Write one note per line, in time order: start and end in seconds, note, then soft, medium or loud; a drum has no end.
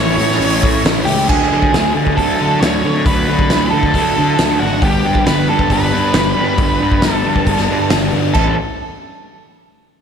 0.00 0.17 A1 medium
0.00 0.41 E3 medium
0.00 0.19 A3 medium
0.00 1.28 A3 medium
0.00 0.18 C#4 medium
0.00 0.16 E4 medium
0.00 1.28 E4 medium
0.00 0.81 C#5 medium
0.00 1.28 C#5 medium
0.17 0.38 A2 loud
0.17 0.85 A3 medium
0.17 0.85 C#4 medium
0.17 0.86 E4 medium
0.17 open hi-hat medium
0.31 snare soft
0.40 0.61 A1 loud
0.40 open hi-hat medium
0.63 0.83 A2 medium
0.63 kick medium
0.63 open hi-hat medium
0.84 1.05 A1 loud
0.84 1.27 A2 medium
0.84 1.28 E3 medium
0.84 1.08 A3 medium
0.84 1.06 C#4 medium
0.84 1.05 E4 medium
0.84 snare loud
0.84 open hi-hat medium
1.05 1.27 C#2 loud
1.05 1.28 C#4 medium
1.05 1.27 E4 medium
1.05 1.29 G4 medium
1.05 open hi-hat medium
1.09 1.29 A3 medium
1.28 1.49 D2 medium
1.28 1.71 D3 medium
1.28 1.54 F#3 medium
1.28 1.52 A3 medium
1.28 1.50 D4 loud
1.28 1.91 G#4 medium
1.28 kick loud
1.28 crash loud
1.51 1.74 D3 medium
1.51 1.73 F#3 medium
1.51 1.74 A3 medium
1.51 1.75 D4 medium
1.62 kick medium
1.72 1.93 D2 medium
1.72 1.95 D3 medium
1.72 1.95 F#3 medium
1.72 1.94 A3 medium
1.72 1.92 D4 medium
1.72 snare loud
1.72 open hi-hat soft
1.93 2.15 D3 medium
1.93 2.14 D3 medium
1.93 2.16 F#3 medium
1.93 2.17 A3 medium
1.93 2.19 D4 medium
2.07 kick medium
2.16 2.38 D2 medium
2.16 2.39 D3 medium
2.16 2.39 F#3 medium
2.16 2.38 A3 medium
2.16 2.37 D4 medium
2.16 2.58 A4 medium
2.16 kick medium
2.16 open hi-hat soft
2.37 2.60 D3 medium
2.37 2.59 D3 medium
2.37 2.60 F#3 medium
2.37 2.61 A3 medium
2.37 2.62 D4 medium
2.60 2.82 D2 medium
2.60 3.04 D3 medium
2.60 2.85 F#3 medium
2.60 2.83 A3 medium
2.60 2.82 D4 medium
2.60 3.02 C#5 loud
2.60 snare loud
2.60 open hi-hat medium
2.83 3.04 D3 medium
2.83 3.05 F#3 medium
2.83 3.06 A3 medium
2.83 3.07 D4 medium
3.05 3.26 D2 loud
3.05 3.48 D3 medium
3.05 3.29 F#3 medium
3.05 3.28 A3 medium
3.05 3.27 D4 medium
3.05 3.68 B4 medium
3.05 kick loud
3.05 open hi-hat medium
3.27 3.53 D3 medium
3.27 3.49 F#3 medium
3.27 3.50 A3 medium
3.27 3.51 D4 medium
3.39 kick medium
3.49 3.71 D2 medium
3.49 3.73 D3 medium
3.49 3.72 F#3 medium
3.49 3.72 A3 medium
3.49 3.72 D4 medium
3.49 snare loud
3.49 open hi-hat medium
3.71 3.92 D3 medium
3.71 3.94 F#3 medium
3.71 3.95 A3 medium
3.71 3.96 D4 medium
3.71 4.62 A4 medium
3.75 3.92 D3 medium
3.83 kick medium
3.93 4.14 D2 medium
3.93 4.18 D3 medium
3.93 4.17 F#3 medium
3.93 4.16 A3 medium
3.93 4.16 D4 medium
3.93 kick medium
3.93 open hi-hat medium
4.16 4.37 D3 medium
4.16 4.36 D3 medium
4.16 4.37 F#3 medium
4.16 4.38 A3 medium
4.16 4.40 D4 medium
4.37 4.59 D2 loud
4.37 4.80 D3 medium
4.37 4.61 F#3 medium
4.37 4.61 A3 medium
4.37 4.60 D4 medium
4.37 snare loud
4.37 open hi-hat medium
4.59 4.81 G#1 medium
4.59 4.82 F#3 medium
4.59 4.82 A3 medium
4.59 4.85 D4 medium
4.59 4.80 F#4 medium
4.82 5.02 G1 medium
4.82 5.51 G2 medium
4.82 5.25 D3 loud
4.82 5.06 G3 loud
4.82 5.05 B3 loud
4.82 5.04 D4 loud
4.82 5.28 G4 medium
4.82 kick loud
4.82 open hi-hat medium
5.04 5.27 G2 medium
5.04 5.27 G3 medium
5.04 5.27 B3 medium
5.04 5.29 D4 medium
5.15 kick medium
5.26 5.46 G1 medium
5.26 5.50 D3 medium
5.26 5.50 G3 medium
5.26 5.50 B3 medium
5.26 5.49 D4 medium
5.26 5.49 B4 medium
5.26 snare loud
5.26 open hi-hat medium
5.48 5.68 G2 medium
5.48 5.94 G2 medium
5.48 5.68 D3 medium
5.48 5.70 G3 medium
5.48 5.70 B3 medium
5.48 5.71 D4 medium
5.48 5.69 A4 medium
5.59 kick medium
5.70 5.91 G1 medium
5.70 5.94 D3 medium
5.70 5.93 G3 medium
5.70 5.92 B3 medium
5.70 5.91 D4 medium
5.70 7.12 B4 medium
5.70 kick medium
5.70 open hi-hat soft
5.92 6.12 G2 medium
5.92 6.38 G2 medium
5.92 6.13 D3 medium
5.92 6.14 G3 medium
5.92 6.16 B3 medium
5.92 6.17 D4 medium
6.13 6.34 G1 loud
6.13 6.57 D3 medium
6.13 6.39 G3 medium
6.13 6.38 B3 medium
6.13 snare loud
6.13 open hi-hat medium
6.18 6.36 D4 medium
6.35 6.56 G2 medium
6.35 6.59 B3 medium
6.35 6.60 D4 medium
6.40 6.58 G3 medium
6.58 6.78 G1 loud
6.58 7.02 G2 medium
6.58 7.01 D3 loud
6.58 6.82 G3 loud
6.58 6.81 B3 loud
6.58 6.79 D4 medium
6.58 kick loud
6.58 open hi-hat medium
6.80 7.04 G2 medium
6.80 7.02 G3 medium
6.80 7.03 B3 medium
6.80 7.04 D4 medium
6.92 kick medium
7.02 7.22 G1 loud
7.02 7.25 D3 medium
7.02 7.24 G3 medium
7.02 7.23 B3 medium
7.02 7.22 D4 medium
7.02 snare loud
7.02 open hi-hat medium
7.12 7.88 A4 medium
7.24 7.44 G2 medium
7.24 7.69 G2 medium
7.24 7.44 D3 medium
7.24 7.45 G3 medium
7.24 7.47 B3 medium
7.24 7.47 D4 loud
7.36 kick medium
7.45 7.67 G1 medium
7.45 7.70 D3 medium
7.45 7.69 G3 medium
7.45 7.68 B3 medium
7.45 7.67 D4 medium
7.45 kick medium
7.45 open hi-hat medium
7.57 snare soft
7.68 7.89 G2 medium
7.68 8.14 G2 medium
7.68 7.88 D3 medium
7.68 7.89 G3 medium
7.68 7.90 B3 medium
7.68 7.91 D4 medium
7.89 8.11 G1 loud
7.89 8.33 D3 medium
7.89 8.14 G3 medium
7.89 8.12 B3 medium
7.89 8.11 D4 medium
7.89 snare loud
7.89 open hi-hat medium
8.12 8.33 G1 medium
8.12 8.34 G3 medium
8.12 8.34 B3 medium
8.12 8.33 D4 medium
8.34 8.56 A1 loud
8.34 8.52 A2 medium
8.34 8.52 E3 medium
8.34 8.52 A3 loud
8.34 8.53 C#4 loud
8.34 8.53 E4 medium
8.34 8.55 A4 medium
8.34 kick loud
8.34 crash medium